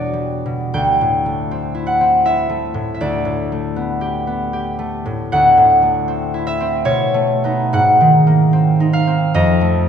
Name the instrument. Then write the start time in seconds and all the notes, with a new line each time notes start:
harp
Already playing: E2 B2 G3 D4 E4 F#4 B4 C#5 D5
0.13 G3
0.46 B2
0.74 D2 G5
1.01 A2
1.26 A3
1.51 C4
1.75 E4
1.87 F#5
2.01 C4
2.25 E4 E5
2.49 A3
2.74 A2
2.94 E5
3.01 D2 D5
3.25 A2
3.52 A3
3.76 B3
4.01 G4
4.27 B3
4.53 G4
4.79 A3
5.06 A2
5.32 D2 F#5
5.57 A2
5.82 A3
6.08 C4
6.34 E4
6.47 E5
6.60 C4
6.85 B2 C#5
7.14 A3
7.44 B3 D#4
7.73 G#2 F#5
8.01 D#3
8.27 A#3
8.53 C4
8.80 D#4
8.93 F5
9.07 C4
9.34 F2 D#5
9.61 A3